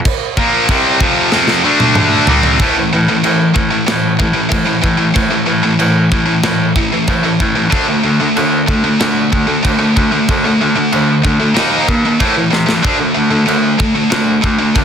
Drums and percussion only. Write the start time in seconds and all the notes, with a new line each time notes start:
0.05 kick, china
0.37 kick
0.69 kick, china
1.00 kick
1.32 snare
1.48 snare
1.80 high tom
1.95 mid tom
2.27 floor tom
2.43 floor tom
2.59 kick, china
3.24 china
3.56 kick
3.88 snare, china
4.20 kick
4.52 kick, china
4.84 kick
5.16 kick, china
5.80 china
6.12 kick
6.43 snare, china
6.76 kick
7.07 kick, china
7.40 kick
7.72 kick, china
8.37 china
8.68 kick
9.01 snare, china
9.33 kick
9.65 kick, china
9.97 kick
10.29 kick, china
10.93 china
11.25 kick
11.57 snare, china
11.88 kick
12.20 kick, china
12.53 snare
12.69 snare
12.85 kick, china
13.48 china
13.80 kick
14.12 snare, china
14.44 kick
14.76 kick, china